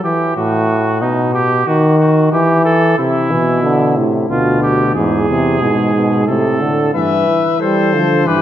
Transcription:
0.04 0.35 E3 medium
0.04 0.36 G4 medium
0.36 1.03 A2 medium
0.36 1.00 F#4 medium
1.01 1.66 B2 medium
1.01 1.33 D#4 medium
1.34 1.68 G4 medium
1.67 2.31 D#3 medium
1.67 1.99 F#4 medium
2.00 2.32 F#4 medium
2.32 2.97 E3 medium
2.32 2.64 G4 medium
2.65 2.97 A4 medium
2.98 3.32 C3 medium
2.98 4.00 E4 medium
3.31 3.99 B2 medium
3.31 3.63 E3 medium
3.63 3.98 D3 medium
3.97 4.29 A2 medium
3.97 4.29 C3 medium
4.29 4.97 D2 medium
4.29 4.94 B2 medium
4.29 4.60 F4 medium
4.62 4.94 G4 medium
4.95 5.61 E2 medium
4.95 5.28 G#2 medium
4.95 6.25 G#4 medium
5.29 5.63 C3 medium
5.61 6.29 G#2 medium
5.61 5.94 B2 medium
5.95 6.27 B2 medium
6.27 6.94 A2 medium
6.27 6.62 C3 medium
6.27 6.93 A4 medium
6.61 6.94 D3 medium
6.94 7.25 G2 medium
6.94 7.44 E3 medium
6.94 7.56 B4 medium
6.94 7.57 E5 medium
7.28 7.95 E3 medium
7.60 7.95 G3 medium
7.60 8.25 A4 medium
7.60 8.28 C5 medium
7.94 8.28 D3 medium
7.94 8.28 F3 medium
8.26 8.42 G2 medium
8.26 8.42 E3 medium
8.26 8.42 G4 medium
8.26 8.42 B4 medium

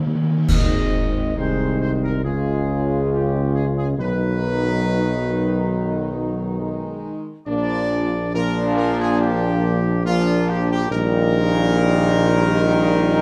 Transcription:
0.00 0.11 D#2 medium
0.00 0.16 A#2 medium
0.00 0.16 D#3 medium
0.07 0.14 D#3 loud
0.15 0.21 D#3 loud
0.23 0.29 D#3 loud
0.30 0.37 D#3 medium
0.38 0.45 D#3 medium
0.48 1.39 G#1 medium
0.48 1.33 D#3 medium
0.48 1.34 G#3 medium
0.48 1.33 C4 medium
0.48 1.33 D#4 medium
0.48 1.33 D#5 loud
0.48 concert bass drum medium
0.48 crash medium
1.36 2.25 C2 medium
1.36 2.20 D#3 medium
1.36 2.20 G#3 medium
1.36 2.20 C4 medium
1.36 2.20 D#4 medium
1.36 1.79 C5 loud
1.81 1.90 C5 loud
2.03 2.23 A#4 medium
2.23 3.97 C#2 medium
2.23 3.98 C#3 medium
2.23 3.94 G#3 medium
2.23 3.98 C#4 medium
2.23 3.98 F4 medium
2.23 3.07 G#4 loud
3.11 3.55 G4 medium
3.54 3.64 G#4 medium
3.77 3.86 G#4 loud
3.97 7.15 B1 medium
3.97 7.43 D#3 medium
3.97 6.55 F#3 medium
3.97 7.30 D#4 medium
3.97 6.99 B4 loud
6.59 7.30 G#3 medium
7.47 10.87 A#1 medium
7.47 8.17 A#2 medium
7.47 8.17 F3 loud
7.47 8.30 A#3 medium
7.47 8.30 D4 loud
7.47 8.30 D5 loud
8.34 10.01 A#2 loud
8.34 10.01 F3 loud
8.34 10.01 A#3 medium
8.34 10.01 D4 loud
8.34 8.74 A#4 loud
8.76 8.96 A#4 loud
8.99 9.18 G#4 loud
9.20 10.01 G4 loud
10.05 10.87 A#2 medium
10.05 10.88 F3 loud
10.05 10.87 A#3 loud
10.05 10.87 D4 loud
10.05 10.45 F4 loud
10.48 10.69 G4 loud
10.70 10.90 G4 loud
10.90 13.22 A#1 loud
10.90 13.22 A#2 loud
10.90 13.22 D#3 loud
10.90 13.22 G3 loud
10.90 13.22 D#4 loud
10.90 13.22 A#4 loud

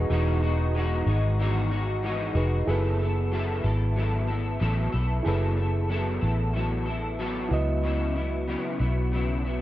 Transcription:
0.00 2.64 E3 medium
0.00 2.65 G#3 medium
0.00 2.65 B3 medium
0.00 0.11 D#4 medium
0.00 2.31 D#4 medium
0.00 2.65 D#4 medium
0.00 0.10 F#4 medium
0.00 2.31 F#4 medium
0.00 2.64 F#4 medium
0.00 2.32 G#4 medium
0.00 2.33 B4 medium
0.10 1.03 E1 loud
0.10 0.42 E3 medium
0.10 0.43 G#3 medium
0.10 0.43 D#4 medium
0.10 0.41 F#4 medium
0.43 0.75 G#3 soft
0.43 0.76 D#4 soft
0.43 0.75 F#4 medium
0.75 1.07 E3 medium
0.75 1.08 G#3 medium
0.75 1.08 D#4 medium
0.75 1.06 F#4 medium
1.06 2.32 G#1 medium
1.06 1.40 D#4 medium
1.06 1.39 F#4 medium
1.10 1.39 G#3 medium
1.40 1.72 E3 medium
1.40 1.72 G#3 medium
1.40 1.72 D#4 medium
1.40 1.70 F#4 medium
1.71 2.03 G#3 soft
1.71 2.04 D#4 medium
1.71 2.03 F#4 medium
2.03 2.35 E3 medium
2.03 2.36 G#3 medium
2.03 2.36 D#4 medium
2.03 2.34 F#4 medium
2.34 2.61 F1 medium
2.34 2.67 D#4 medium
2.34 2.69 D#4 medium
2.34 2.68 F#4 medium
2.34 2.68 F#4 soft
2.34 2.66 G#4 soft
2.34 2.68 B4 medium
2.39 2.68 G#3 soft
2.66 3.60 F#1 loud
2.66 3.00 F#3 medium
2.66 3.01 B3 medium
2.66 5.21 E4 medium
2.66 3.00 E4 medium
2.66 5.21 G#4 medium
2.66 5.22 A4 medium
2.70 2.98 A4 medium
2.70 5.23 B4 medium
2.99 3.32 B3 soft
2.99 3.32 E4 soft
2.99 3.32 A4 medium
3.32 3.64 F#3 medium
3.32 3.65 B3 medium
3.32 3.65 E4 medium
3.32 3.63 A4 medium
3.64 4.57 G#1 medium
3.64 3.96 B3 soft
3.64 3.97 E4 medium
3.64 3.97 A4 medium
3.96 4.29 F#3 medium
3.96 4.29 B3 medium
3.96 4.28 E4 medium
3.96 4.26 A4 medium
4.28 4.59 B3 soft
4.28 4.60 E4 medium
4.28 4.61 A4 medium
4.60 4.87 A1 medium
4.60 4.93 F#3 medium
4.60 4.93 B3 medium
4.60 4.93 E4 medium
4.60 4.91 A4 medium
4.92 5.19 B1 medium
4.92 5.25 B3 soft
4.92 5.26 E4 medium
4.92 5.25 A4 medium
5.23 6.18 F#1 loud
5.23 5.58 F#3 medium
5.23 5.58 B3 medium
5.23 7.46 E4 medium
5.23 7.47 G#4 medium
5.23 7.47 A4 medium
5.27 5.58 E4 medium
5.27 5.56 A4 medium
5.27 7.48 B4 medium
5.57 5.89 B3 soft
5.57 5.90 E4 soft
5.57 5.90 A4 medium
5.89 6.22 F#3 medium
5.89 6.22 B3 medium
5.89 6.22 E4 medium
5.89 6.20 A4 medium
6.21 7.47 A1 medium
6.21 6.54 B3 soft
6.21 6.55 E4 medium
6.21 6.54 A4 medium
6.54 6.86 F#3 medium
6.54 6.87 B3 medium
6.54 6.87 E4 medium
6.54 6.85 A4 medium
6.86 7.19 B3 soft
6.86 7.19 E4 medium
6.86 7.18 A4 medium
7.19 7.51 F#3 medium
7.19 7.52 B3 medium
7.19 7.49 E4 medium
7.19 7.52 A4 medium
7.49 8.54 C#2 medium
7.49 9.61 E4 medium
7.49 7.83 E4 medium
7.49 9.61 F#4 medium
7.49 9.61 B4 medium
7.53 7.83 F#3 medium
7.53 7.84 B3 medium
7.53 9.61 D#5 medium
7.83 8.15 C#3 medium
7.83 8.16 F#3 medium
7.83 8.16 B3 medium
7.83 8.14 E4 medium
8.15 8.47 F#3 soft
8.15 8.48 B3 soft
8.15 8.48 E4 medium
8.47 8.80 C#3 medium
8.47 8.80 F#3 medium
8.47 8.80 B3 medium
8.47 8.78 E4 medium
8.79 9.61 B1 medium
8.79 9.13 B3 medium
8.79 9.12 E4 medium
8.83 9.12 F#3 soft
9.12 9.44 C#3 medium
9.12 9.45 F#3 medium
9.12 9.45 B3 medium
9.12 9.43 E4 medium
9.45 9.61 F#3 soft
9.45 9.61 B3 medium
9.45 9.61 E4 medium

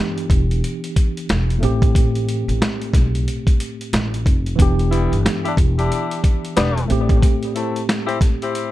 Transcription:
0.00 1.57 E3 medium
0.00 1.58 B3 medium
0.00 1.59 D4 medium
0.00 1.60 G4 medium
0.18 closed hi-hat medium
0.30 0.60 E1 loud
0.30 kick loud
0.30 closed hi-hat medium
0.51 closed hi-hat medium
0.64 closed hi-hat medium
0.84 closed hi-hat medium
0.96 kick medium
0.96 closed hi-hat medium
1.17 closed hi-hat medium
1.29 1.59 E1 medium
1.29 snare loud
1.29 closed hi-hat medium
1.50 closed hi-hat medium
1.58 4.20 A2 medium
1.58 4.21 A3 medium
1.63 2.44 A1 medium
1.63 4.22 C4 medium
1.63 4.23 G4 medium
1.63 closed hi-hat medium
1.82 kick loud
1.82 closed hi-hat medium
1.95 kick loud
1.95 closed hi-hat loud
2.15 closed hi-hat soft
2.29 closed hi-hat medium
2.48 2.60 A1 medium
2.48 closed hi-hat medium
2.62 snare loud
2.62 closed hi-hat loud
2.82 closed hi-hat medium
2.94 3.24 B1 medium
2.94 kick medium
2.94 snare soft
2.94 closed hi-hat medium
3.15 closed hi-hat medium
3.28 closed hi-hat medium
3.47 kick loud
3.47 closed hi-hat medium
3.60 closed hi-hat medium
3.81 closed hi-hat medium
3.93 4.23 A1 loud
3.93 snare loud
3.93 closed hi-hat loud
4.14 closed hi-hat medium
4.26 4.56 F1 medium
4.26 kick medium
4.26 closed hi-hat medium
4.46 closed hi-hat soft
4.56 5.08 E1 loud
4.56 6.84 E3 medium
4.56 6.85 B3 medium
4.56 kick loud
4.60 6.86 D4 medium
4.60 6.87 G4 medium
4.60 closed hi-hat loud
4.79 closed hi-hat soft
4.91 5.18 G3 medium
4.91 5.18 B3 medium
4.91 5.18 E4 loud
4.91 closed hi-hat medium
5.12 5.24 G1 medium
5.12 closed hi-hat medium
5.26 snare loud
5.26 closed hi-hat loud
5.45 5.55 D4 medium
5.45 5.55 E4 medium
5.45 5.55 G4 loud
5.45 closed hi-hat soft
5.57 5.87 E1 loud
5.57 kick medium
5.57 closed hi-hat medium
5.78 6.21 D4 medium
5.78 6.21 E4 medium
5.78 6.21 G4 medium
5.78 closed hi-hat medium
5.92 closed hi-hat medium
6.11 closed hi-hat medium
6.24 kick medium
6.24 closed hi-hat medium
6.45 closed hi-hat medium
6.56 6.87 E1 medium
6.56 6.83 G3 loud
6.56 6.83 B3 loud
6.56 6.83 D4 loud
6.56 snare loud
6.56 closed hi-hat loud
6.78 closed hi-hat medium
6.86 8.72 A2 medium
6.86 8.72 A3 medium
6.90 7.20 A1 loud
6.90 8.72 C4 medium
6.90 8.72 G4 medium
6.90 closed hi-hat medium
7.09 kick loud
7.09 closed hi-hat medium
7.22 kick loud
7.22 closed hi-hat loud
7.43 closed hi-hat soft
7.55 7.82 A3 medium
7.55 7.82 C4 medium
7.55 7.82 E4 medium
7.55 closed hi-hat medium
7.76 closed hi-hat medium
7.89 snare loud
7.89 closed hi-hat medium
8.07 8.18 C4 medium
8.07 8.18 E4 medium
8.07 8.18 G4 loud
8.07 closed hi-hat medium
8.21 kick medium
8.21 snare soft
8.21 closed hi-hat medium
8.42 8.72 C4 medium
8.42 8.72 E4 medium
8.42 8.72 G4 medium
8.42 closed hi-hat medium
8.55 closed hi-hat medium

